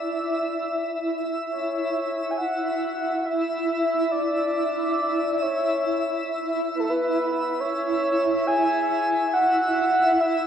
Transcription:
Already playing: E4 D5 E5
1.51 C#5
2.31 G#5
2.37 F#5
3.26 E5
4.11 D5
5.42 C#5
6.75 B4
6.80 A4
6.90 B4
7.60 C#5
8.47 G#5
9.34 F#5
10.21 E5

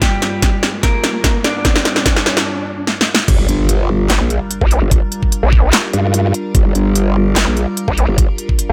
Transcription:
Already playing: G2 G3 A#3 F4, riser
0.01 G3 G4, kick, snare, closed hi-hat
0.22 snare, closed hi-hat
0.42 kick, snare, closed hi-hat
0.63 snare
0.83 A#3 A#4, kick, snare, closed hi-hat
1.04 snare, closed hi-hat
1.24 kick, snare, closed hi-hat
1.44 D4 D5, snare, closed hi-hat
1.65 kick, snare, closed hi-hat
1.76 snare
1.85 snare, closed hi-hat
1.96 snare
2.06 kick, snare, closed hi-hat
2.16 snare
2.26 snare
2.37 snare
2.87 snare
3.01 snare
3.15 snare
3.28 G1 G3 D4 F4 A#4, kick, closed hi-hat, crash, impact
3.49 G1, closed hi-hat
3.69 closed hi-hat
4.10 G1, snare, clap, closed hi-hat
4.21 A#1
4.30 closed hi-hat
4.51 closed hi-hat
4.61 A#1, kick
4.71 closed hi-hat
4.82 G1
4.91 kick, closed hi-hat
5.12 closed hi-hat
5.23 kick
5.32 closed hi-hat
5.43 A#1
5.53 kick
5.73 snare, clap, closed hi-hat
5.93 G2, closed hi-hat
6.14 closed hi-hat
6.34 closed hi-hat
6.55 G1, kick, closed hi-hat
6.75 G1, closed hi-hat
6.95 closed hi-hat
7.36 G1, snare, clap, closed hi-hat
7.47 A#1
7.57 closed hi-hat
7.77 closed hi-hat
7.88 A#1, kick
7.98 closed hi-hat
8.08 G1
8.18 kick, closed hi-hat
8.38 closed hi-hat
8.49 kick
8.59 closed hi-hat

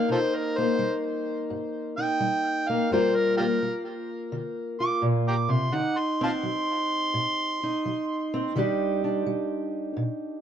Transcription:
Already playing: A#3
0.09 C3 D#4 F4 A4 C5
0.36 A#4
0.58 A#3 C5
0.79 G3
1.50 G2
1.97 D#4 G5
2.20 G3
2.69 A#3 F5
2.91 G2 G3 A#3 F4 A#4 C5
3.15 A#4
3.37 A#3 F4 G4 A#4
3.62 G3
4.32 D3
4.80 F4 D6
5.02 A#2
5.28 G5 A#5 D6
5.49 C3 C6
5.73 D3 D#4 F#5
5.99 C6
6.21 C4 F5 A5 C6
6.43 F#3
7.14 A2
7.63 D#4
7.85 F#3
8.34 C4
8.56 D#3 G3 D4 D#4 G4
9.04 D4
9.26 G3
9.97 A#2

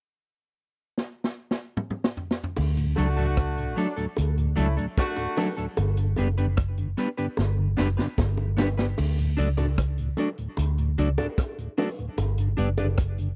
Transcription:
0.98 snare
1.24 snare
1.51 snare
1.77 mid tom
1.90 mid tom
2.04 snare
2.17 floor tom
2.31 snare
2.44 floor tom
2.57 D2, crash, high bongo
2.77 D2 A2, closed hi-hat
2.96 C#2 F#3 A3 D4 F#4 A4, closed hi-hat, high bongo
3.16 D2 A2 F#3 A3 D4 A4, closed hi-hat
3.37 kick, cross-stick, closed hi-hat
3.57 D2 A2, closed hi-hat
3.76 F#3 A3 D4 A4, closed hi-hat
3.96 D2 A2 F#3 A3 D4 A4, closed hi-hat
4.17 D2, closed hi-hat, high bongo
4.38 D2 A2, closed hi-hat
4.56 C#2 F#3 A3 C#4 D4 E4 A4, closed hi-hat
4.77 D2 A2 F#3 A3 D4 A4, closed hi-hat
4.98 A3 D4 F#4, kick, cross-stick, closed hi-hat, high bongo
5.17 D2 A2, closed hi-hat, high bongo
5.37 F#3 A3 D4 A4, open hi-hat, low bongo
5.57 D2 A2 F#3 A3 D4 A4, closed hi-hat
5.77 G1, closed hi-hat, high bongo
5.97 G2 D3, closed hi-hat
6.16 F#1 G3 B3 D4 G4 B4, closed hi-hat, high bongo
6.38 G2 D3 B3 D4 G4 B4, closed hi-hat
6.57 kick, cross-stick, closed hi-hat
6.77 G2 D3, closed hi-hat
6.97 G3 B3 D4 G4 B4, cross-stick, closed hi-hat
7.17 G2 D3 B3 D4 G4 B4, closed hi-hat
7.37 G1, snare, high bongo
7.59 G2 D3
7.77 F#1 G3 B3 D4 G4 B4, snare
7.97 G2 D3 B3 D4 G4 B4, snare
8.18 G1, kick, snare, high bongo
8.37 G2 D3, high bongo
8.57 G3 B3 D4 G4 B4, snare, low bongo
8.78 G2 D3 B3 D4 G4 B4, snare
8.98 D2, crash, high bongo
9.18 D2 A2, closed hi-hat
9.37 C#2 F#3 A3 D4 F#4 A4 D5, closed hi-hat
9.57 D2 A2 D4 F#4 A4 D5, closed hi-hat, high bongo
9.78 kick, cross-stick, closed hi-hat
9.98 D2 A2, closed hi-hat
10.17 F#3 A3 D4 F#4 A4 D5, closed hi-hat, low bongo
10.38 D2 A2, closed hi-hat
10.57 D2, closed hi-hat, high bongo
10.78 D2 A2, closed hi-hat
10.98 C#2 F#3 A3 D4 F#4 A4 D5, closed hi-hat
11.18 D2 A2 D4 F#4 A4 D5, closed hi-hat, high bongo
11.38 kick, cross-stick, closed hi-hat, high bongo
11.58 D2 A2, closed hi-hat
11.78 F#3 A3 D4 F#4 A4 D5, open hi-hat, low bongo
11.98 D2 A2, closed hi-hat
12.18 G1, closed hi-hat, high bongo
12.38 G2 D3, closed hi-hat
12.57 F#1 G3 B3 D4 G4 B4 D5, closed hi-hat
12.78 G2 D3 D4 G4 B4 D5, closed hi-hat, high bongo
12.98 kick, cross-stick, closed hi-hat
13.18 G2 D3, closed hi-hat

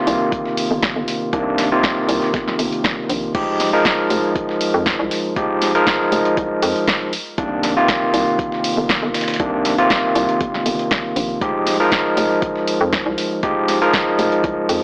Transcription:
Already playing: C3 D#3 A#3 F4
0.07 C2, closed hi-hat, open hi-hat
0.32 kick, closed hi-hat
0.46 snare
0.57 closed hi-hat, open hi-hat
0.71 G1
0.83 kick, snare, closed hi-hat
0.96 G1
1.08 snare, closed hi-hat, open hi-hat
1.33 C2 C3 D#3 A#3 D4, kick, closed hi-hat
1.58 snare, closed hi-hat, open hi-hat
1.72 C3 D#3 A#3 F4
1.83 kick, snare, closed hi-hat
2.09 C2, closed hi-hat, open hi-hat
2.22 snare
2.34 G1, kick, snare, closed hi-hat
2.48 snare
2.59 G1, closed hi-hat, open hi-hat
2.72 closed hi-hat
2.84 kick, snare, closed hi-hat
3.09 A#1, closed hi-hat, open hi-hat
3.35 F1 F3 G#3 D#4 G4, kick, closed hi-hat, crash
3.60 snare, closed hi-hat, open hi-hat
3.73 F3 G#3 D#4 A#4
3.85 kick, snare, closed hi-hat
4.10 F1, closed hi-hat, open hi-hat
4.36 kick, closed hi-hat
4.49 snare
4.61 closed hi-hat, open hi-hat
4.74 F2
4.86 kick, snare, closed hi-hat
4.99 C2
5.11 snare, closed hi-hat, open hi-hat
5.36 F1 F3 G#3 D#4 G4, kick, closed hi-hat
5.62 snare, closed hi-hat, open hi-hat
5.75 F3 G#3 D#4 A#4, closed hi-hat
5.87 kick, snare, closed hi-hat
6.12 F1, closed hi-hat, open hi-hat
6.25 closed hi-hat
6.37 C2, kick, closed hi-hat
6.62 F2, closed hi-hat, open hi-hat
6.76 closed hi-hat
6.88 kick, snare, closed hi-hat
7.13 closed hi-hat, open hi-hat
7.38 C2 C3 D#3 A#3 D4, kick, closed hi-hat
7.63 snare, closed hi-hat, open hi-hat
7.77 C3 D#3 A#3 F4
7.88 kick, snare, closed hi-hat
8.14 C2, closed hi-hat, open hi-hat
8.39 kick, closed hi-hat
8.52 snare
8.64 closed hi-hat, open hi-hat
8.77 G1
8.89 kick, snare, closed hi-hat
9.03 G1
9.14 snare, closed hi-hat, open hi-hat
9.21 snare, closed hi-hat
9.28 snare, closed hi-hat
9.34 snare, closed hi-hat
9.40 C2 C3 D#3 A#3 D4, kick, closed hi-hat
9.65 snare, closed hi-hat, open hi-hat
9.78 C3 D#3 A#3 F4, closed hi-hat
9.90 kick, snare, closed hi-hat
10.15 C2, closed hi-hat, open hi-hat
10.29 closed hi-hat
10.41 G1, kick, closed hi-hat
10.54 snare
10.66 G1, closed hi-hat, open hi-hat
10.79 closed hi-hat
10.91 kick, snare, closed hi-hat
11.16 A#1, closed hi-hat, open hi-hat
11.41 F1 F3 G#3 D#4 G4, kick, closed hi-hat
11.67 snare, closed hi-hat, open hi-hat
11.80 F3 G#3 D#4 A#4
11.92 kick, snare, closed hi-hat
12.17 F1, closed hi-hat, open hi-hat
12.42 kick, closed hi-hat
12.56 snare
12.67 closed hi-hat, open hi-hat
12.81 F2
12.93 kick, snare, closed hi-hat
13.06 C2
13.18 snare, closed hi-hat, open hi-hat
13.43 F1 F3 G#3 D#4 G4, kick, closed hi-hat
13.68 snare, closed hi-hat, open hi-hat
13.82 F3 G#3 D#4 A#4, closed hi-hat
13.94 kick, snare, closed hi-hat
14.19 F1, closed hi-hat, open hi-hat
14.32 closed hi-hat
14.44 C2, kick, closed hi-hat
14.69 F2, closed hi-hat, open hi-hat

